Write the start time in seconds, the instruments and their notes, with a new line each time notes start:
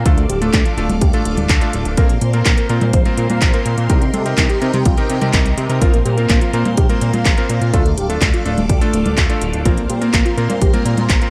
Already playing: string machine F5
0.05 analog synth bass D2, electric grand piano A3 D4 F4 A4, analog synth lead F4, string machine A4 D5 D6, kick, closed hi-hat
0.18 analog synth lead A3, closed hi-hat
0.29 analog synth bass D1, analog synth lead G4, closed hi-hat
0.41 analog synth lead A3, electric grand piano A3 D4 F4 A4, closed hi-hat
0.53 analog synth bass D2, analog synth lead A3, kick, clap, closed hi-hat
0.65 analog synth lead F4, closed hi-hat
0.77 analog synth bass D1, analog synth lead A3, electric grand piano A3 D4 F4 A4, closed hi-hat
0.89 analog synth bass D1, analog synth lead A3, closed hi-hat, high conga
1.01 analog synth bass D2, analog synth lead G4, kick, closed hi-hat
1.13 analog synth lead A3, electric grand piano A3 D4 F4 A4, closed hi-hat
1.25 analog synth bass D1, analog synth lead A3, closed hi-hat
1.37 analog synth bass D1, closed hi-hat, high conga
1.49 analog synth bass D2, kick, clap, closed hi-hat
1.61 electric grand piano A3 D4 F4 A4, closed hi-hat
1.73 analog synth bass D1, closed hi-hat
1.85 analog synth bass D1, closed hi-hat
1.97 analog synth bass A#1, electric grand piano A#3 C4 F4 A#4, analog synth lead A#4, string machine A#4 C5 C6, kick, closed hi-hat
2.09 analog synth lead A#3, closed hi-hat
2.21 analog synth bass A#2, analog synth lead C5, closed hi-hat
2.33 analog synth lead A#3, electric grand piano A#3 C4 F4 A#4, closed hi-hat
2.46 analog synth bass A#1, analog synth lead A#3, kick, clap, closed hi-hat
2.57 analog synth lead A#4, closed hi-hat
2.69 analog synth bass A#2, analog synth lead A#3, electric grand piano A#3 C4 F4 A#4, closed hi-hat
2.81 analog synth bass A#2, analog synth lead A#3, closed hi-hat, high conga
2.93 analog synth bass A#1, analog synth lead C5, kick, closed hi-hat
3.05 electric grand piano A#3 C4 F4 A#4, analog synth lead A#3, closed hi-hat, high conga
3.18 analog synth bass A#2, analog synth lead A#3, closed hi-hat
3.30 analog synth bass A#2, closed hi-hat, high conga
3.42 analog synth bass A#1, kick, clap, closed hi-hat
3.54 electric grand piano A#3 C4 F4 A#4, closed hi-hat
3.66 analog synth bass A#2, closed hi-hat
3.78 analog synth bass A#2, closed hi-hat
3.90 analog synth bass C2, electric grand piano C4 D#4 G4 A#4, analog synth lead G4, string machine D#5 G5, kick, closed hi-hat
4.01 analog synth lead C4, closed hi-hat
4.13 analog synth bass C3, analog synth lead A4, closed hi-hat, high conga
4.25 analog synth lead C4, electric grand piano C4 D#4 G4 A#4, closed hi-hat
4.38 analog synth bass C2, analog synth lead C4, kick, clap, closed hi-hat
4.49 analog synth lead G4, closed hi-hat
4.62 analog synth bass C3, electric grand piano C4 D#4 G4 A#4, analog synth lead C4, closed hi-hat
4.74 analog synth bass C3, analog synth lead C4, closed hi-hat, high conga
4.85 analog synth bass C2, analog synth lead F4, kick, closed hi-hat
4.97 electric grand piano C4 D#4 G4 A#4, analog synth lead C4, closed hi-hat
5.10 analog synth bass C3, analog synth lead C4, closed hi-hat
5.21 analog synth bass C3, electric grand piano C4 D#4 G4 A#4, closed hi-hat, high conga
5.33 analog synth bass C2, electric grand piano C4 D#4 G4 A#4, kick, clap, closed hi-hat
5.46 closed hi-hat, high conga
5.58 analog synth bass C3, closed hi-hat
5.69 analog synth bass C3, electric grand piano C4 D#4 G4 A#4, closed hi-hat
5.81 analog synth bass A#1, electric grand piano A#3 C4 F4 A#4, analog synth lead F4, string machine C5 F5 C6, kick, closed hi-hat
5.93 analog synth lead A#3, closed hi-hat
6.05 analog synth bass A#2, analog synth lead G4, closed hi-hat
6.17 analog synth lead A#3, electric grand piano A#3 C4 F4 A#4, closed hi-hat
6.29 analog synth bass A#1, analog synth lead A#3, kick, clap, closed hi-hat
6.41 analog synth lead F4, closed hi-hat
6.53 analog synth bass A#2, electric grand piano A#3 C4 F4 A#4, analog synth lead A#3, closed hi-hat
6.65 analog synth bass A#2, analog synth lead A#3, closed hi-hat, high conga
6.77 analog synth bass A#1, analog synth lead G4, kick, closed hi-hat
6.89 electric grand piano A#3 C4 F4 A#4, analog synth lead A#3, closed hi-hat, high conga
7.01 analog synth bass A#2, analog synth lead A#3, closed hi-hat
7.13 analog synth bass A#2, closed hi-hat, high conga
7.25 analog synth bass A#1, kick, clap, closed hi-hat
7.38 electric grand piano A#3 C4 F4 A#4, closed hi-hat
7.50 analog synth bass A#2, closed hi-hat
7.62 analog synth bass A#2, closed hi-hat
7.73 analog synth bass D2, electric grand piano A3 D4 F4 A4, analog synth lead F4, string machine A4 D5 D6, kick, closed hi-hat
7.86 analog synth lead A3, closed hi-hat
7.97 analog synth bass D1, analog synth lead G4, closed hi-hat
8.10 analog synth lead A3, electric grand piano A3 D4 F4 A4, closed hi-hat
8.22 analog synth bass D2, analog synth lead A3, kick, clap, closed hi-hat
8.34 analog synth lead F4, closed hi-hat
8.45 analog synth bass D1, electric grand piano A3 D4 F4 A4, analog synth lead A3, closed hi-hat
8.57 analog synth bass D1, analog synth lead A3, closed hi-hat, high conga
8.69 analog synth bass D2, analog synth lead G4, kick, closed hi-hat
8.81 electric grand piano A3 D4 F4 A4, analog synth lead A3, closed hi-hat
8.93 analog synth bass D1, analog synth lead A3, closed hi-hat
9.05 analog synth bass D1, closed hi-hat, high conga
9.17 analog synth bass D2, kick, clap, closed hi-hat
9.29 electric grand piano A3 D4 F4 A4, closed hi-hat
9.41 analog synth bass D1, closed hi-hat
9.53 analog synth bass D1, closed hi-hat
9.65 analog synth bass A#1, electric grand piano A#3 C4 F4 A#4, analog synth lead F4, string machine A#4 C5 C6, kick, closed hi-hat
9.78 analog synth lead A#3, closed hi-hat
9.90 analog synth bass A#2, analog synth lead G4, closed hi-hat
10.01 electric grand piano A#3 C4 F4 A#4, analog synth lead A#3, closed hi-hat
10.13 analog synth bass A#1, analog synth lead A#3, kick, clap, closed hi-hat
10.25 analog synth lead F4, closed hi-hat
10.37 analog synth bass A#2, analog synth lead A#3, electric grand piano A#3 C4 F4 A#4, closed hi-hat
10.49 analog synth bass A#2, analog synth lead A#3, closed hi-hat, high conga
10.62 analog synth bass A#1, analog synth lead G4, kick, closed hi-hat
10.73 analog synth lead A#3, electric grand piano A#3 C4 F4 A#4, closed hi-hat, high conga
10.85 analog synth bass A#2, analog synth lead A#3, closed hi-hat
10.97 analog synth bass A#2, closed hi-hat, high conga
11.10 analog synth bass A#1, kick, clap, closed hi-hat
11.22 electric grand piano A#3 C4 F4 A#4, closed hi-hat